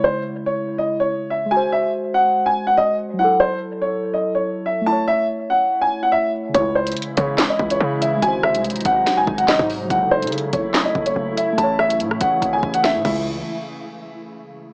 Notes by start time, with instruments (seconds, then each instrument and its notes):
Already playing: synth keys C#3 G#3 E4
0.04 grand piano C5
0.46 grand piano C#5
0.78 grand piano D#5
1.00 grand piano C#5
1.30 grand piano E5
1.46 synth keys G#3
1.51 synth keys F#4, grand piano G#5
1.56 synth keys C5
1.72 grand piano E5
2.14 grand piano F#5
2.46 grand piano G#5
2.67 grand piano F#5
2.77 grand piano D#5
3.13 synth keys F#3
3.19 synth keys E4, grand piano F#5
3.24 synth keys A4
3.40 grand piano C5
3.82 grand piano C#5
4.14 grand piano D#5
4.35 grand piano C#5
4.66 grand piano E5
4.81 synth keys A3
4.86 synth keys E4, grand piano A5
4.92 synth keys C#5
5.08 grand piano E5
5.50 grand piano F#5
5.82 grand piano G#5
6.03 grand piano F#5
6.12 grand piano E5
6.49 synth keys C#3
6.54 808-style bass C#2, ambient pad C#3 E3 G#3 E4, synth keys G#3, grand piano C#5, kick, closed hi-hat
6.60 synth keys E4
6.75 grand piano C5
6.87 closed hi-hat
6.92 closed hi-hat
6.97 closed hi-hat
7.02 closed hi-hat
7.17 808-style bass C#3, grand piano C#5, kick, closed hi-hat
7.38 snare, clap, closed hi-hat
7.49 grand piano D#5
7.59 808-style bass C#2, kick
7.70 grand piano C#5, closed hi-hat
7.80 808-style bass C#3
8.01 grand piano E5, closed hi-hat
8.17 synth keys G#3
8.22 808-style bass G#1, ambient pad C3 F#3 D#4, synth keys F#4, grand piano G#5, closed hi-hat
8.28 synth keys C5
8.43 grand piano E5, cross-stick
8.55 808-style bass C2, closed hi-hat
8.64 closed hi-hat
8.70 808-style bass G#1, closed hi-hat
8.76 closed hi-hat
8.81 closed hi-hat
8.85 808-style bass G#1, grand piano F#5, kick, closed hi-hat
9.06 snare, closed hi-hat
9.17 grand piano G#5
9.27 808-style bass G#1, kick
9.38 grand piano F#5, closed hi-hat
9.48 grand piano D#5, snare, clap
9.59 808-style bass G#2, kick
9.70 open hi-hat
9.85 synth keys F#3
9.90 808-style bass F#1, ambient pad C#3 A3 E4, synth keys E4, grand piano F#5, kick, closed hi-hat
9.95 synth keys A4
10.11 grand piano C5
10.22 808-style bass C#3, closed hi-hat
10.27 closed hi-hat
10.32 closed hi-hat
10.38 closed hi-hat
10.53 808-style bass F#1, grand piano C#5, kick, closed hi-hat
10.74 snare, clap, closed hi-hat
10.85 grand piano D#5
10.95 808-style bass F#1, kick
11.06 grand piano C#5, closed hi-hat
11.16 808-style bass F#1
11.37 grand piano E5, closed hi-hat
11.53 synth keys A3
11.58 808-style bass A1, ambient pad C#3 E3 A3, synth keys E4, grand piano A5, closed hi-hat
11.63 synth keys C#5
11.79 grand piano E5, cross-stick
11.90 closed hi-hat
12.00 808-style bass A2, closed hi-hat
12.11 cross-stick
12.21 808-style bass A1, grand piano F#5, kick, closed hi-hat
12.42 808-style bass G#1, kick, closed hi-hat
12.53 grand piano G#5
12.63 808-style bass A1, kick
12.74 grand piano F#5, closed hi-hat
12.83 grand piano E5, snare
12.95 808-style bass A2
13.05 808-style bass C#2, synth keys C#3 G#3 E4, ambient pad C#3 E3 G#3 E4, grand piano E5, kick, crash